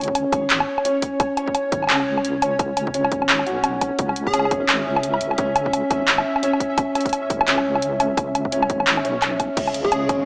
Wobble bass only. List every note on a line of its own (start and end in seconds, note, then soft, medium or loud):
0.00 0.24 C#2 medium
0.32 0.66 G#1 loud
1.72 1.88 G#1 loud
1.89 3.11 C#2 medium
3.12 3.48 G#1 loud
3.47 3.91 B1 medium
3.99 4.50 C#2 loud
4.51 4.88 G#1 loud
4.87 5.20 C#2 loud
5.21 5.82 C#2 medium
5.90 6.25 G#1 loud
7.30 7.46 G#1 loud
7.48 8.69 C#2 medium
8.70 9.06 G#1 loud
9.04 9.48 B1 medium
9.57 10.08 C#2 loud
10.09 10.25 G#1 loud